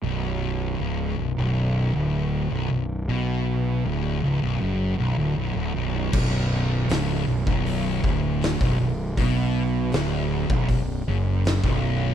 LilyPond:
<<
  \new Staff \with { instrumentName = "Distorted electric guitar" } { \clef bass \time 4/4 \key b \minor \tempo 4 = 79 b,,4 cis,8 b,,16 b,,8. d,8. b,,16 b,,8 | b,4 d,8 cis,16 b,,16 fis,8 b,,16 d,16 b,,16 d,16 b,,8 | b,,4 cis,8 b,,16 b,,8. d,8. b,,16 b,,8 | b,4 d,8. b,,16 b,,8 fis,8. b,,8. | }
  \new Staff \with { instrumentName = "Distorted electric guitar" } { \clef bass \time 4/4 \key b \minor b,,4 cis,8 b,,16 b,,8. d,8. b,,16 b,,8 | b,4 d,8 cis,16 b,,16 fis,8 b,,16 d,16 b,,16 d,16 b,,8 | b,,4 cis,8 b,,16 b,,8. d,8. b,,16 b,,8 | b,4 d,8. b,,16 b,,8 fis,8. b,,8. | }
  \new Staff \with { instrumentName = "Fingered electric bass" } { \clef bass \time 4/4 \key b \minor b,,,4 cis,,8 b,,,16 b,,,8. d,,8. b,,,16 b,,,8 | b,,4 d,,8 cis,,16 b,,,16 fis,,8 b,,,16 d,,16 b,,,16 d,,16 b,,,8 | b,,,4 cis,,8 b,,,16 b,,,8. d,,8. b,,,16 b,,,8 | b,,4 d,,8. b,,,16 b,,,8 fis,,8. b,,,8. | }
  \new DrumStaff \with { instrumentName = "Drums" } \drummode { \time 4/4 r4 r4 r4 r4 | r4 r4 r4 r4 | <cymc bd>4 <hho sn>8. bd16 hho8 bd8 <hho sn>16 bd8. | <hho bd>4 <hho sn>8. bd16 <hho bd>4 <hho sn>16 bd8. | }
>>